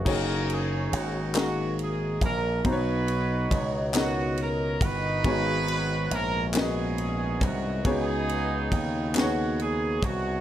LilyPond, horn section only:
\new Staff \with { instrumentName = "Horn section" } { \time 6/8 \key fis \major \tempo 4. = 46 << { ais'8 gis'8 fis'8 fis'8 gis'8 ais'8 | b'4 r8 fis'8 ais'8 b'8~ | b'4 ais'8 gis'4 fis'8 | gis'4 r8 fis'8 gis'8 fis'8 | } \\ { <cis' dis'>4. r4. | <dis' fis'>4. r4 <dis' fis'>8~ | <dis' fis'>4 r8 <b cis'>4. | <b dis'>4. r4. | } >> }